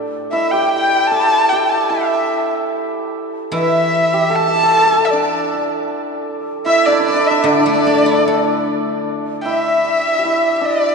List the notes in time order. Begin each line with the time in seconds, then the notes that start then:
Already playing: A2 D4 E4 G4 A4
0.30 E4 E5
0.51 G4 G5
0.70 G5
0.74 G5
1.07 A5
1.11 A4 A5
1.20 B5
1.27 A5
1.34 B5
1.42 A5
1.49 G4 G5
1.69 A5
1.90 E4 E5
3.52 E3 E4 E5
3.56 E5
4.14 G4
4.30 A4 A5
4.35 A5
4.40 A4
4.48 A4
4.55 A4
4.63 A4
4.70 A4
4.78 A4
4.83 A4
4.92 A4
4.98 A4
5.05 E5
5.10 D4 D5
6.66 E4 E5
6.86 D4 D5
6.92 D4
7.00 D4
7.05 D4 D5
7.14 D4
7.20 D4
7.27 D4 E5
7.37 E4 E5
7.44 D3 D4 D5
7.66 A3
7.87 D4
8.06 E4
8.28 A4
9.42 E4 E5 G5
9.47 E5
10.19 G4
10.25 E4
10.61 D4
10.65 D5